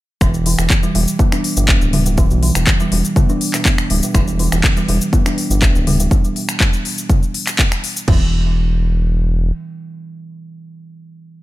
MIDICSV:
0, 0, Header, 1, 4, 480
1, 0, Start_track
1, 0, Key_signature, 1, "minor"
1, 0, Tempo, 491803
1, 208, Time_signature, 4, 2, 24, 8
1, 11154, End_track
2, 0, Start_track
2, 0, Title_t, "Kalimba"
2, 0, Program_c, 0, 108
2, 207, Note_on_c, 0, 52, 101
2, 326, Note_off_c, 0, 52, 0
2, 449, Note_on_c, 0, 52, 76
2, 516, Note_off_c, 0, 52, 0
2, 572, Note_on_c, 0, 47, 76
2, 676, Note_off_c, 0, 47, 0
2, 813, Note_on_c, 0, 55, 76
2, 916, Note_off_c, 0, 55, 0
2, 928, Note_on_c, 0, 55, 79
2, 995, Note_off_c, 0, 55, 0
2, 1167, Note_on_c, 0, 59, 101
2, 1286, Note_off_c, 0, 59, 0
2, 1293, Note_on_c, 0, 62, 75
2, 1396, Note_off_c, 0, 62, 0
2, 1533, Note_on_c, 0, 47, 78
2, 1637, Note_off_c, 0, 47, 0
2, 1648, Note_on_c, 0, 59, 78
2, 1760, Note_off_c, 0, 59, 0
2, 1887, Note_on_c, 0, 55, 77
2, 1955, Note_off_c, 0, 55, 0
2, 2014, Note_on_c, 0, 47, 75
2, 2122, Note_off_c, 0, 47, 0
2, 2127, Note_on_c, 0, 52, 100
2, 2246, Note_off_c, 0, 52, 0
2, 2369, Note_on_c, 0, 52, 75
2, 2436, Note_off_c, 0, 52, 0
2, 2493, Note_on_c, 0, 47, 74
2, 2596, Note_off_c, 0, 47, 0
2, 2736, Note_on_c, 0, 55, 76
2, 2839, Note_off_c, 0, 55, 0
2, 2851, Note_on_c, 0, 55, 81
2, 2917, Note_off_c, 0, 55, 0
2, 3092, Note_on_c, 0, 59, 98
2, 3208, Note_off_c, 0, 59, 0
2, 3217, Note_on_c, 0, 62, 77
2, 3318, Note_off_c, 0, 62, 0
2, 3455, Note_on_c, 0, 47, 78
2, 3558, Note_off_c, 0, 47, 0
2, 3570, Note_on_c, 0, 59, 80
2, 3681, Note_off_c, 0, 59, 0
2, 3812, Note_on_c, 0, 55, 76
2, 3877, Note_off_c, 0, 55, 0
2, 3936, Note_on_c, 0, 47, 74
2, 4044, Note_off_c, 0, 47, 0
2, 4051, Note_on_c, 0, 52, 102
2, 4168, Note_off_c, 0, 52, 0
2, 4290, Note_on_c, 0, 52, 76
2, 4356, Note_off_c, 0, 52, 0
2, 4415, Note_on_c, 0, 47, 79
2, 4518, Note_off_c, 0, 47, 0
2, 4656, Note_on_c, 0, 55, 77
2, 4759, Note_off_c, 0, 55, 0
2, 4770, Note_on_c, 0, 55, 81
2, 4836, Note_off_c, 0, 55, 0
2, 5008, Note_on_c, 0, 59, 102
2, 5127, Note_off_c, 0, 59, 0
2, 5134, Note_on_c, 0, 62, 78
2, 5237, Note_off_c, 0, 62, 0
2, 5375, Note_on_c, 0, 47, 78
2, 5478, Note_off_c, 0, 47, 0
2, 5487, Note_on_c, 0, 59, 85
2, 5600, Note_off_c, 0, 59, 0
2, 5730, Note_on_c, 0, 55, 77
2, 5797, Note_off_c, 0, 55, 0
2, 5855, Note_on_c, 0, 47, 76
2, 5963, Note_off_c, 0, 47, 0
2, 7887, Note_on_c, 0, 52, 92
2, 8111, Note_off_c, 0, 52, 0
2, 11154, End_track
3, 0, Start_track
3, 0, Title_t, "Analog synth bass"
3, 0, Program_c, 1, 38
3, 204, Note_on_c, 1, 28, 100
3, 538, Note_off_c, 1, 28, 0
3, 568, Note_on_c, 1, 28, 86
3, 667, Note_off_c, 1, 28, 0
3, 926, Note_on_c, 1, 28, 98
3, 1031, Note_off_c, 1, 28, 0
3, 1530, Note_on_c, 1, 31, 91
3, 1730, Note_off_c, 1, 31, 0
3, 1773, Note_on_c, 1, 26, 94
3, 2220, Note_off_c, 1, 26, 0
3, 2252, Note_on_c, 1, 35, 104
3, 2452, Note_off_c, 1, 35, 0
3, 2493, Note_on_c, 1, 28, 86
3, 2589, Note_off_c, 1, 28, 0
3, 2847, Note_on_c, 1, 28, 101
3, 2952, Note_off_c, 1, 28, 0
3, 3809, Note_on_c, 1, 26, 97
3, 3913, Note_off_c, 1, 26, 0
3, 4045, Note_on_c, 1, 28, 99
3, 4379, Note_off_c, 1, 28, 0
3, 4412, Note_on_c, 1, 28, 89
3, 4508, Note_off_c, 1, 28, 0
3, 4768, Note_on_c, 1, 28, 97
3, 4872, Note_off_c, 1, 28, 0
3, 5369, Note_on_c, 1, 31, 87
3, 5570, Note_off_c, 1, 31, 0
3, 5612, Note_on_c, 1, 26, 95
3, 5937, Note_off_c, 1, 26, 0
3, 7885, Note_on_c, 1, 28, 100
3, 9287, Note_off_c, 1, 28, 0
3, 11154, End_track
4, 0, Start_track
4, 0, Title_t, "Drums"
4, 205, Note_on_c, 9, 36, 118
4, 208, Note_on_c, 9, 26, 88
4, 209, Note_on_c, 9, 69, 64
4, 303, Note_off_c, 9, 36, 0
4, 306, Note_off_c, 9, 26, 0
4, 306, Note_off_c, 9, 69, 0
4, 332, Note_on_c, 9, 69, 40
4, 430, Note_off_c, 9, 69, 0
4, 447, Note_on_c, 9, 46, 96
4, 545, Note_off_c, 9, 46, 0
4, 571, Note_on_c, 9, 26, 96
4, 572, Note_on_c, 9, 69, 79
4, 669, Note_off_c, 9, 26, 0
4, 669, Note_off_c, 9, 69, 0
4, 684, Note_on_c, 9, 36, 123
4, 686, Note_on_c, 9, 39, 96
4, 686, Note_on_c, 9, 69, 67
4, 782, Note_off_c, 9, 36, 0
4, 784, Note_off_c, 9, 39, 0
4, 784, Note_off_c, 9, 69, 0
4, 811, Note_on_c, 9, 69, 40
4, 909, Note_off_c, 9, 69, 0
4, 927, Note_on_c, 9, 46, 90
4, 1025, Note_off_c, 9, 46, 0
4, 1053, Note_on_c, 9, 69, 80
4, 1150, Note_off_c, 9, 69, 0
4, 1164, Note_on_c, 9, 36, 112
4, 1167, Note_on_c, 9, 69, 67
4, 1262, Note_off_c, 9, 36, 0
4, 1265, Note_off_c, 9, 69, 0
4, 1292, Note_on_c, 9, 26, 85
4, 1292, Note_on_c, 9, 69, 40
4, 1389, Note_off_c, 9, 26, 0
4, 1389, Note_off_c, 9, 69, 0
4, 1407, Note_on_c, 9, 46, 94
4, 1505, Note_off_c, 9, 46, 0
4, 1530, Note_on_c, 9, 69, 82
4, 1628, Note_off_c, 9, 69, 0
4, 1645, Note_on_c, 9, 36, 122
4, 1646, Note_on_c, 9, 39, 105
4, 1646, Note_on_c, 9, 69, 65
4, 1742, Note_off_c, 9, 36, 0
4, 1743, Note_off_c, 9, 39, 0
4, 1744, Note_off_c, 9, 69, 0
4, 1770, Note_on_c, 9, 69, 38
4, 1868, Note_off_c, 9, 69, 0
4, 1885, Note_on_c, 9, 46, 97
4, 1885, Note_on_c, 9, 47, 92
4, 1982, Note_off_c, 9, 46, 0
4, 1982, Note_off_c, 9, 47, 0
4, 2010, Note_on_c, 9, 69, 80
4, 2107, Note_off_c, 9, 69, 0
4, 2125, Note_on_c, 9, 36, 123
4, 2125, Note_on_c, 9, 69, 70
4, 2223, Note_off_c, 9, 36, 0
4, 2223, Note_off_c, 9, 69, 0
4, 2251, Note_on_c, 9, 69, 40
4, 2349, Note_off_c, 9, 69, 0
4, 2368, Note_on_c, 9, 46, 89
4, 2465, Note_off_c, 9, 46, 0
4, 2492, Note_on_c, 9, 26, 99
4, 2492, Note_on_c, 9, 69, 86
4, 2590, Note_off_c, 9, 26, 0
4, 2590, Note_off_c, 9, 69, 0
4, 2606, Note_on_c, 9, 36, 125
4, 2608, Note_on_c, 9, 39, 93
4, 2608, Note_on_c, 9, 69, 66
4, 2703, Note_off_c, 9, 36, 0
4, 2705, Note_off_c, 9, 39, 0
4, 2706, Note_off_c, 9, 69, 0
4, 2733, Note_on_c, 9, 69, 43
4, 2830, Note_off_c, 9, 69, 0
4, 2848, Note_on_c, 9, 46, 92
4, 2946, Note_off_c, 9, 46, 0
4, 2973, Note_on_c, 9, 69, 83
4, 3071, Note_off_c, 9, 69, 0
4, 3086, Note_on_c, 9, 36, 119
4, 3090, Note_on_c, 9, 47, 89
4, 3090, Note_on_c, 9, 69, 68
4, 3183, Note_off_c, 9, 36, 0
4, 3188, Note_off_c, 9, 47, 0
4, 3188, Note_off_c, 9, 69, 0
4, 3213, Note_on_c, 9, 69, 42
4, 3311, Note_off_c, 9, 69, 0
4, 3327, Note_on_c, 9, 46, 92
4, 3425, Note_off_c, 9, 46, 0
4, 3454, Note_on_c, 9, 26, 87
4, 3454, Note_on_c, 9, 39, 30
4, 3454, Note_on_c, 9, 69, 81
4, 3551, Note_off_c, 9, 26, 0
4, 3551, Note_off_c, 9, 39, 0
4, 3552, Note_off_c, 9, 69, 0
4, 3565, Note_on_c, 9, 36, 125
4, 3568, Note_on_c, 9, 39, 97
4, 3569, Note_on_c, 9, 69, 69
4, 3663, Note_off_c, 9, 36, 0
4, 3666, Note_off_c, 9, 39, 0
4, 3666, Note_off_c, 9, 69, 0
4, 3693, Note_on_c, 9, 26, 100
4, 3693, Note_on_c, 9, 69, 41
4, 3790, Note_off_c, 9, 26, 0
4, 3791, Note_off_c, 9, 69, 0
4, 3807, Note_on_c, 9, 46, 96
4, 3904, Note_off_c, 9, 46, 0
4, 3933, Note_on_c, 9, 69, 84
4, 4030, Note_off_c, 9, 69, 0
4, 4046, Note_on_c, 9, 36, 124
4, 4048, Note_on_c, 9, 26, 86
4, 4048, Note_on_c, 9, 69, 68
4, 4143, Note_off_c, 9, 36, 0
4, 4145, Note_off_c, 9, 26, 0
4, 4146, Note_off_c, 9, 69, 0
4, 4173, Note_on_c, 9, 69, 42
4, 4270, Note_off_c, 9, 69, 0
4, 4288, Note_on_c, 9, 46, 89
4, 4385, Note_off_c, 9, 46, 0
4, 4414, Note_on_c, 9, 26, 97
4, 4415, Note_on_c, 9, 69, 86
4, 4512, Note_off_c, 9, 26, 0
4, 4512, Note_off_c, 9, 69, 0
4, 4526, Note_on_c, 9, 36, 127
4, 4529, Note_on_c, 9, 39, 95
4, 4529, Note_on_c, 9, 69, 66
4, 4623, Note_off_c, 9, 36, 0
4, 4626, Note_off_c, 9, 39, 0
4, 4627, Note_off_c, 9, 69, 0
4, 4653, Note_on_c, 9, 69, 43
4, 4750, Note_off_c, 9, 69, 0
4, 4768, Note_on_c, 9, 46, 89
4, 4865, Note_off_c, 9, 46, 0
4, 4893, Note_on_c, 9, 69, 86
4, 4991, Note_off_c, 9, 69, 0
4, 5005, Note_on_c, 9, 36, 121
4, 5009, Note_on_c, 9, 69, 72
4, 5103, Note_off_c, 9, 36, 0
4, 5107, Note_off_c, 9, 69, 0
4, 5134, Note_on_c, 9, 26, 88
4, 5134, Note_on_c, 9, 69, 43
4, 5232, Note_off_c, 9, 26, 0
4, 5232, Note_off_c, 9, 69, 0
4, 5249, Note_on_c, 9, 46, 88
4, 5347, Note_off_c, 9, 46, 0
4, 5375, Note_on_c, 9, 69, 84
4, 5472, Note_off_c, 9, 69, 0
4, 5485, Note_on_c, 9, 36, 122
4, 5489, Note_on_c, 9, 39, 102
4, 5489, Note_on_c, 9, 69, 72
4, 5583, Note_off_c, 9, 36, 0
4, 5587, Note_off_c, 9, 39, 0
4, 5587, Note_off_c, 9, 69, 0
4, 5615, Note_on_c, 9, 69, 44
4, 5712, Note_off_c, 9, 69, 0
4, 5730, Note_on_c, 9, 46, 89
4, 5730, Note_on_c, 9, 47, 99
4, 5827, Note_off_c, 9, 46, 0
4, 5827, Note_off_c, 9, 47, 0
4, 5854, Note_on_c, 9, 69, 84
4, 5952, Note_off_c, 9, 69, 0
4, 5965, Note_on_c, 9, 36, 123
4, 5969, Note_on_c, 9, 69, 70
4, 6063, Note_off_c, 9, 36, 0
4, 6066, Note_off_c, 9, 69, 0
4, 6094, Note_on_c, 9, 69, 43
4, 6192, Note_off_c, 9, 69, 0
4, 6208, Note_on_c, 9, 46, 84
4, 6305, Note_off_c, 9, 46, 0
4, 6331, Note_on_c, 9, 26, 98
4, 6331, Note_on_c, 9, 69, 84
4, 6429, Note_off_c, 9, 26, 0
4, 6429, Note_off_c, 9, 69, 0
4, 6445, Note_on_c, 9, 36, 125
4, 6447, Note_on_c, 9, 39, 95
4, 6447, Note_on_c, 9, 69, 67
4, 6543, Note_off_c, 9, 36, 0
4, 6544, Note_off_c, 9, 39, 0
4, 6545, Note_off_c, 9, 69, 0
4, 6571, Note_on_c, 9, 69, 41
4, 6669, Note_off_c, 9, 69, 0
4, 6687, Note_on_c, 9, 46, 83
4, 6785, Note_off_c, 9, 46, 0
4, 6813, Note_on_c, 9, 69, 81
4, 6911, Note_off_c, 9, 69, 0
4, 6925, Note_on_c, 9, 36, 119
4, 6927, Note_on_c, 9, 47, 96
4, 6927, Note_on_c, 9, 69, 72
4, 7023, Note_off_c, 9, 36, 0
4, 7025, Note_off_c, 9, 47, 0
4, 7025, Note_off_c, 9, 69, 0
4, 7053, Note_on_c, 9, 69, 43
4, 7151, Note_off_c, 9, 69, 0
4, 7168, Note_on_c, 9, 46, 87
4, 7265, Note_off_c, 9, 46, 0
4, 7294, Note_on_c, 9, 26, 85
4, 7294, Note_on_c, 9, 39, 30
4, 7295, Note_on_c, 9, 69, 82
4, 7392, Note_off_c, 9, 26, 0
4, 7392, Note_off_c, 9, 39, 0
4, 7392, Note_off_c, 9, 69, 0
4, 7405, Note_on_c, 9, 36, 120
4, 7407, Note_on_c, 9, 39, 100
4, 7408, Note_on_c, 9, 69, 72
4, 7503, Note_off_c, 9, 36, 0
4, 7505, Note_off_c, 9, 39, 0
4, 7505, Note_off_c, 9, 69, 0
4, 7533, Note_on_c, 9, 26, 91
4, 7534, Note_on_c, 9, 69, 42
4, 7631, Note_off_c, 9, 26, 0
4, 7631, Note_off_c, 9, 69, 0
4, 7649, Note_on_c, 9, 46, 91
4, 7747, Note_off_c, 9, 46, 0
4, 7774, Note_on_c, 9, 69, 84
4, 7872, Note_off_c, 9, 69, 0
4, 7884, Note_on_c, 9, 43, 105
4, 7884, Note_on_c, 9, 49, 91
4, 7886, Note_on_c, 9, 36, 104
4, 7982, Note_off_c, 9, 43, 0
4, 7982, Note_off_c, 9, 49, 0
4, 7983, Note_off_c, 9, 36, 0
4, 11154, End_track
0, 0, End_of_file